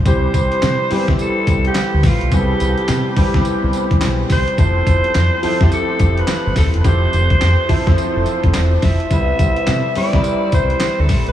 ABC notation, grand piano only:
X:1
M:4/4
L:1/16
Q:"Swing 16ths" 1/4=106
K:C
V:1 name="Grand piano"
[E,G,CG]4 z2 [E,G,B,CG] [E,G,B,CE]4- [E,G,B,CE] z4 | [E,G,B,C^GA]4 z2 [E,=G,B,C=G] [E,G,B,CG]4- [E,G,B,CG] z4 | [F,A,CEA]4 z2 [F,A,CEA] [F,A,CEG]4- [F,A,CEG] z4 | [F,A,CEG]4 z2 [F,A,CEA] [F,A,CEc]4- [F,A,CEc] z4 |
[G,B,CEB]4 z2 [G,B,CEB] [G,CE_Bc]4- [G,CEBc] z4 |]